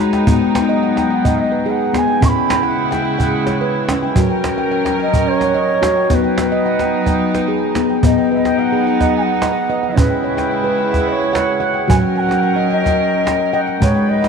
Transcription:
Already playing: G#3 D#4 B4
0.00 G#3, cajon slap
0.13 G5, cajon slap
0.27 F#3 B3, cajon bass
0.42 G5
0.55 G5, cajon slap
0.69 D#5, cajon slap
0.83 F#5, cajon slap
0.97 G5, cajon slap
1.10 F#5 G5
1.25 D#5 G5, cajon bass
1.40 D#5
1.52 B4
1.66 G#4 F#5
1.94 B3 G#5, cajon slap
2.08 G5, cajon slap
2.21 C#3 G#3 C#4 E4 C#6, cajon bass
2.28 B5
2.35 G5
2.49 G5, cajon slap
2.63 F#5, cajon slap
2.78 cajon slap
2.91 G5, cajon slap
3.05 G5
3.19 F#5 G5, cajon bass
3.46 C#5, cajon slap
3.61 B4
3.88 C#4, cajon slap
4.02 G5, cajon slap
4.15 F#3 C#4 F#4 A#4, cajon bass
4.30 G5
4.44 G5, cajon slap
4.58 G5, cajon slap
4.72 G5, cajon slap
4.85 G5, cajon slap
5.00 D#5 G5
5.13 G5, cajon bass
5.28 C#5
5.40 F#5, cajon slap
5.54 D#5
5.81 F#4, cajon slap
5.96 G5, cajon slap
6.10 F#3 B3 D#4 C#5, cajon bass, cajon slap
6.14 B4
6.24 G5
6.37 G5, cajon slap
6.52 D#5, cajon slap
6.66 F#5
6.79 G5, cajon slap
6.93 cajon slap
7.06 D#5 G5, cajon bass, cajon slap
7.34 B4, cajon slap
7.48 G#4
7.75 B3, cajon slap
7.89 G5, cajon slap
8.03 F#3 B3 D#4 D#5, cajon bass
8.18 G5
8.32 B4 E5
8.37 D#5
8.45 G5, cajon slap
8.59 F#5
8.63 F#5
8.72 G#4, cajon slap
8.87 F#5, cajon slap
9.01 D#5, cajon bass, cajon slap
9.17 G#5
9.22 F#5
9.28 cajon slap
9.42 D#5, cajon slap
9.69 B4 D#5, cajon slap
9.83 F#5, cajon slap
9.94 C#3 G#3 C#4 E4 B4, cajon bass
10.10 G5
10.24 C#5
10.37 G5, cajon slap
10.51 G5
10.64 B4, cajon slap
10.78 G5, cajon slap
10.92 F#5, cajon bass, cajon slap
11.08 D#5
11.12 C#5
11.22 cajon slap
11.33 F#5, cajon slap
11.60 C#5 F#5, cajon slap
11.74 G5, cajon slap
11.88 F#3 C#4 F#4 A#4 G#5, cajon bass
12.02 G5
12.15 F#5 G#5
12.20 F#5
12.29 G5, cajon slap
12.43 G5
12.56 D#5, cajon slap
12.70 D#5 G5, cajon slap
12.84 G5, cajon bass, cajon slap
13.13 cajon slap
13.25 G5, cajon slap
13.53 D#5 F#5 G5, cajon slap
13.67 G5, cajon slap
13.81 G#3 D#4 B4 C#5, cajon bass
13.95 G5, cajon slap
14.09 G#4 D#5, cajon slap
14.22 F#5, cajon slap

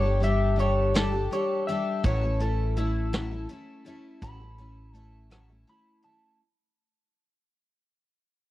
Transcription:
Already playing: G1 C#5
0.02 D4 G4 A4
0.20 G3 D4 G4 A4 E5, closed hi-hat
0.56 G3 D4 G4 A4, closed hi-hat
0.60 C#5
0.94 G3 D4 G4 A4, snare, closed hi-hat
1.12 D4 G4 A4
1.31 G3 D4 G4 A4 C#5, closed hi-hat
1.67 G3 D4 G4 E5, closed hi-hat
1.72 A4
2.04 A1 A2 F#3 A3 C#4 E4 A4 C#5, kick, closed hi-hat
2.21 A3 C#4 E4 A4
2.39 A3 C#4 E4 A4, closed hi-hat
2.76 A3 C#4 E4 A4, closed hi-hat
3.13 A2 F#3 A3 C#4 E4 A4, snare, closed hi-hat
3.31 A3 C#4 E4 A4
3.49 A3 C#4 E4 A4, closed hi-hat
3.85 A3 C#4 E4 A4, closed hi-hat
4.21 A1 A2 F#3 A3 C#4 E4 A4 B5, kick, closed hi-hat
4.40 A3 C#4 E4 A4
4.58 A3 C#4 E4 A4, closed hi-hat
4.93 A3 C#4 E4 A5, closed hi-hat
4.97 A4
5.30 A2 F#3 A3 C#4 E4 A4, cross-stick, closed hi-hat
5.49 A3 C#4 E4 A4
5.67 A3 C#4 E4 A4 B5, closed hi-hat
6.02 A3 C#4 A5, closed hi-hat
6.08 E4 A4

